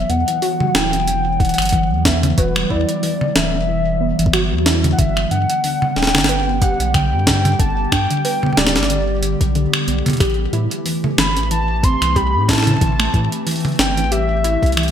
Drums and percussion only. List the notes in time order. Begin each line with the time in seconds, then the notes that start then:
0.10 closed hi-hat
0.28 closed hi-hat
0.42 open hi-hat
0.60 mid tom
0.75 finger snap, snare
0.93 closed hi-hat
1.08 closed hi-hat
1.40 kick, closed hi-hat
1.45 closed hi-hat
1.49 closed hi-hat
1.54 closed hi-hat
1.58 finger snap, closed hi-hat
1.62 closed hi-hat
1.65 closed hi-hat
1.69 kick, closed hi-hat
1.73 closed hi-hat
2.05 kick, snare, closed hi-hat
2.23 closed hi-hat, mid tom
2.38 kick, closed hi-hat
2.56 finger snap
2.70 kick
2.89 closed hi-hat
3.03 open hi-hat
3.21 mid tom
3.36 finger snap, snare
4.19 closed hi-hat
4.26 kick
4.33 finger snap, closed hi-hat
4.66 snare, closed hi-hat
4.84 closed hi-hat, mid tom
4.99 kick, closed hi-hat
5.17 finger snap
5.31 closed hi-hat
5.50 closed hi-hat
5.64 open hi-hat
5.82 mid tom
5.96 snare
6.03 snare
6.07 snare
6.15 finger snap, snare
6.18 snare
6.24 snare
6.29 closed hi-hat
6.62 kick, closed hi-hat
6.80 closed hi-hat
6.94 finger snap, kick, closed hi-hat
7.27 kick, snare, closed hi-hat
7.45 closed hi-hat, mid tom
7.59 kick, closed hi-hat
7.92 finger snap, kick, closed hi-hat
8.10 closed hi-hat
8.25 open hi-hat
8.43 mid tom
8.46 mid tom
8.53 mid tom
8.57 snare, mid tom
8.63 finger snap, snare, mid tom
8.68 mid tom
8.76 snare, closed hi-hat
8.83 snare
8.90 closed hi-hat
9.23 closed hi-hat
9.41 kick, closed hi-hat
9.55 closed hi-hat
9.73 finger snap
9.88 closed hi-hat
10.06 closed hi-hat, mid tom
10.08 closed hi-hat, mid tom
10.13 closed hi-hat, mid tom
10.16 closed hi-hat, mid tom
10.18 finger snap, kick, closed hi-hat, mid tom
10.30 closed hi-hat
10.34 closed hi-hat
10.53 closed hi-hat
10.71 closed hi-hat
10.86 open hi-hat
11.04 mid tom
11.18 finger snap, snare
11.37 closed hi-hat
11.51 closed hi-hat
11.83 kick, closed hi-hat
12.02 finger snap, closed hi-hat
12.16 kick, closed hi-hat
12.49 kick, snare, closed hi-hat
12.53 snare
12.58 snare
12.62 snare
12.67 closed hi-hat, mid tom
12.71 mid tom
12.77 mid tom
12.81 kick, closed hi-hat, mid tom
12.88 mid tom
12.92 mid tom
13.00 finger snap
13.14 kick, closed hi-hat
13.32 closed hi-hat
13.47 open hi-hat
13.51 open hi-hat
13.56 open hi-hat
13.60 open hi-hat
13.65 mid tom, open hi-hat
13.68 open hi-hat
13.72 open hi-hat
13.76 finger snap, snare, open hi-hat
13.97 closed hi-hat
14.12 closed hi-hat
14.44 closed hi-hat
14.63 kick, closed hi-hat
14.66 closed hi-hat
14.72 closed hi-hat
14.77 finger snap, closed hi-hat
14.83 closed hi-hat
14.88 closed hi-hat